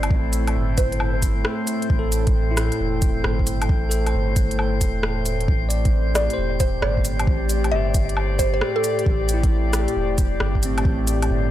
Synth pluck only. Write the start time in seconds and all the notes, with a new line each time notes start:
0.78 C5
6.15 D5
6.60 C5
6.82 D5
7.72 E5
8.39 C5
8.54 C5
8.76 A4